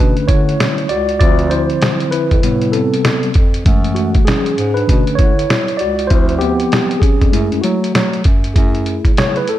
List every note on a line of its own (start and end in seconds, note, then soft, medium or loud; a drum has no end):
0.00 0.15 B2 loud
0.00 0.86 D3 medium
0.00 0.86 A3 soft
0.00 0.86 C#4 medium
0.00 0.26 D4 medium
0.00 0.30 B4 medium
0.17 0.22 D3 soft
0.17 closed hi-hat soft
0.28 0.55 D3 loud
0.28 0.86 E4 medium
0.28 0.91 C#5 loud
0.28 kick loud
0.28 closed hi-hat medium
0.49 closed hi-hat medium
0.60 snare loud
0.60 closed hi-hat medium
0.78 closed hi-hat soft
0.89 1.17 C#2 medium
0.89 1.19 F#4 medium
0.89 1.18 D5 loud
0.89 closed hi-hat medium
1.09 closed hi-hat medium
1.20 1.74 D2 loud
1.20 2.39 D3 medium
1.20 2.39 F3 soft
1.20 2.40 C4 medium
1.20 1.50 F4 medium
1.20 1.52 D5 loud
1.20 kick loud
1.20 closed hi-hat medium
1.39 closed hi-hat soft
1.50 2.09 E4 medium
1.50 2.14 C5 loud
1.50 closed hi-hat medium
1.70 closed hi-hat soft
1.82 snare loud
1.82 closed hi-hat medium
2.00 closed hi-hat soft
2.11 2.70 E4 medium
2.11 2.75 B4 medium
2.11 closed hi-hat medium
2.31 2.42 F2 medium
2.31 kick medium
2.31 closed hi-hat soft
2.42 2.96 A2 loud
2.42 3.31 C3 medium
2.42 3.31 G3 soft
2.42 3.31 B3 medium
2.42 closed hi-hat medium
2.62 closed hi-hat medium
2.72 3.31 C4 medium
2.72 3.30 A4 medium
2.72 closed hi-hat medium
2.94 closed hi-hat medium
3.05 snare loud
3.05 closed hi-hat medium
3.23 closed hi-hat medium
3.34 3.62 F2 medium
3.34 kick loud
3.34 closed hi-hat medium
3.54 closed hi-hat medium
3.65 4.19 F#2 loud
3.65 4.53 E3 medium
3.65 4.54 G#3 medium
3.65 3.96 A3 medium
3.65 kick loud
3.65 closed hi-hat medium
3.84 closed hi-hat medium
3.95 4.25 A3 medium
3.95 4.27 F#4 medium
3.95 closed hi-hat medium
4.15 kick medium
4.15 closed hi-hat soft
4.25 4.74 C#4 medium
4.25 4.77 G#4 medium
4.25 snare loud
4.25 closed hi-hat medium
4.46 closed hi-hat medium
4.58 4.84 G#2 loud
4.58 closed hi-hat medium
4.74 5.16 D4 medium
4.74 5.19 B4 loud
4.74 closed hi-hat soft
4.87 5.05 B2 loud
4.87 5.31 D3 medium
4.87 5.31 A3 medium
4.87 5.32 C#4 medium
4.87 kick medium
4.87 closed hi-hat loud
5.07 5.12 D3 medium
5.07 closed hi-hat medium
5.15 5.45 D3 loud
5.15 5.76 E4 medium
5.15 5.80 C#5 loud
5.15 kick medium
5.15 closed hi-hat medium
5.39 closed hi-hat medium
5.50 snare loud
5.50 closed hi-hat medium
5.68 closed hi-hat soft
5.77 6.07 C#2 medium
5.77 6.09 F#4 medium
5.77 6.10 D5 loud
5.77 closed hi-hat medium
5.99 closed hi-hat medium
6.07 6.64 D2 loud
6.07 7.29 F3 medium
6.07 7.29 C4 medium
6.07 6.40 E4 medium
6.07 6.37 C5 loud
6.07 kick loud
6.07 closed hi-hat medium
6.29 closed hi-hat medium
6.39 6.99 B3 medium
6.39 7.03 G4 loud
6.39 closed hi-hat medium
6.60 closed hi-hat medium
6.72 snare loud
6.72 closed hi-hat medium
6.91 closed hi-hat medium
6.99 7.60 C#4 medium
6.99 7.58 G#4 medium
6.99 kick medium
6.99 closed hi-hat medium
7.21 7.32 F2 medium
7.21 kick medium
7.21 closed hi-hat medium
7.32 7.49 F#2 loud
7.32 7.76 G#3 medium
7.32 7.63 A3 medium
7.32 7.77 E4 medium
7.32 closed hi-hat loud
7.52 7.62 F#2 medium
7.52 closed hi-hat soft
7.61 7.90 F#3 loud
7.61 8.21 A3 medium
7.61 8.20 F#4 medium
7.61 closed hi-hat medium
7.84 closed hi-hat medium
7.94 8.21 F#3 loud
7.94 snare loud
7.94 closed hi-hat medium
8.13 closed hi-hat medium
8.24 8.52 F#2 medium
8.24 kick loud
8.24 closed hi-hat medium
8.44 closed hi-hat medium
8.54 8.98 F#2 loud
8.54 9.59 A3 soft
8.54 9.59 E4 medium
8.54 9.59 G#4 soft
8.54 kick loud
8.54 closed hi-hat medium
8.75 closed hi-hat medium
8.86 closed hi-hat medium
9.05 9.18 A2 medium
9.05 kick medium
9.05 closed hi-hat medium
9.16 9.43 C#3 medium
9.16 9.37 C#5 loud
9.16 snare loud
9.16 closed hi-hat medium
9.36 9.49 B4 medium
9.36 closed hi-hat soft
9.47 9.59 A4 medium
9.47 closed hi-hat medium